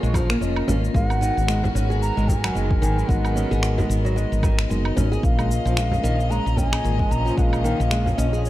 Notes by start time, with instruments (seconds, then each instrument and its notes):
Already playing: string section A#2 C#3 F3 C#4 F4, tine electric piano A#3 C#4 F4 A#4, synth texture A#4
0.03 fretless electric bass A#1, nylon-string guitar G#3, shaker
0.14 nylon-string guitar F3, kick, frame drum, low woodblock, shaker
0.30 nylon-string guitar A#3, finger snap, shaker
0.40 fretless electric bass F1, tine electric piano A#3 C#4 F4 D#5, nylon-string guitar C#4, shaker
0.56 low woodblock
0.68 fretless electric bass G#1, nylon-string guitar C#4, frame drum, shaker
0.84 shaker
0.93 fretless electric bass G#1, string section D#3 F#3 G#3 B3 F#4, nylon-string guitar G#3, tine electric piano B3 D#4 F#4 A#4, bansuri F5, kick, shaker
1.08 bansuri F#5, low woodblock, shaker
1.21 nylon-string guitar D#3, shaker
1.37 fretless electric bass G#1, shaker
1.48 nylon-string guitar G#3, finger snap, shaker
1.64 frame drum, shaker
1.75 fretless electric bass G#1, nylon-string guitar C#4, shaker
1.90 nylon-string guitar G#4, shaker
2.02 bansuri A#5, shaker
2.17 fretless electric bass G#1, nylon-string guitar G#3, shaker
2.28 bansuri G#5, kick, frame drum, shaker
2.44 nylon-string guitar F#3, finger snap, low woodblock, shaker
2.54 fretless electric bass F#1, nylon-string guitar G#3, tine electric piano B3 D#4 F#4 A#4, shaker
2.71 kick
2.81 fretless electric bass G#1, nylon-string guitar D#3, bansuri G#5, shaker
2.99 shaker
3.07 fretless electric bass G#1, nylon-string guitar G#3, tine electric piano B3 D#4 F#4 A#4, string section D#5, bansuri F#5, kick, shaker
3.25 low woodblock, shaker
3.36 nylon-string guitar C#4, shaker
3.51 fretless electric bass G#1, nylon-string guitar G#4, shaker
3.63 finger snap, shaker
3.78 nylon-string guitar G#3, frame drum, shaker
3.89 fretless electric bass G#1, shaker
4.05 nylon-string guitar F#3, shaker
4.16 nylon-string guitar G#3, shaker
4.32 fretless electric bass G#1, shaker
4.43 nylon-string guitar D#3, kick, frame drum, low woodblock, shaker
4.59 finger snap, shaker
4.69 fretless electric bass F#1, nylon-string guitar G#3, tine electric piano B3 D#4 F#4 A#4, shaker
4.85 low woodblock
4.96 fretless electric bass G#1, nylon-string guitar C#4, frame drum, shaker
5.12 nylon-string guitar G#4, shaker
5.22 fretless electric bass A#1, string section A#2 C#3 F3 C#4, tine electric piano A#3 C#4 F4 A#4, bansuri F5, kick, shaker
5.39 nylon-string guitar G#3, low woodblock, shaker
5.51 shaker
5.65 fretless electric bass A#1, nylon-string guitar F3, shaker
5.77 nylon-string guitar G#3, finger snap, shaker
5.91 frame drum, shaker
6.03 fretless electric bass A#1, nylon-string guitar D#3, shaker
6.20 shaker
6.30 nylon-string guitar G#3, bansuri A#5, shaker
6.46 fretless electric bass A#1, shaker
6.57 nylon-string guitar C#4, bansuri G#5, kick, frame drum, shaker
6.72 nylon-string guitar G#4, finger snap, low woodblock, shaker
6.83 fretless electric bass G#1, tine electric piano A#3 C#4 F4 A#4, shaker
6.99 nylon-string guitar G#3, kick
7.11 fretless electric bass A#1, bansuri A#5, shaker
7.26 nylon-string guitar F3, shaker
7.36 fretless electric bass A#1, nylon-string guitar G#3, tine electric piano A#3 C#4 F4 A#4, bansuri F#5, kick, shaker
7.41 bansuri F5
7.53 low woodblock, shaker
7.64 nylon-string guitar D#3, shaker
7.80 fretless electric bass A#1, shaker
7.91 nylon-string guitar G#3, finger snap, shaker
8.06 frame drum, shaker
8.18 fretless electric bass A#1, nylon-string guitar C#4, bansuri D#5, shaker
8.33 nylon-string guitar G#4, shaker
8.45 bansuri C#5, shaker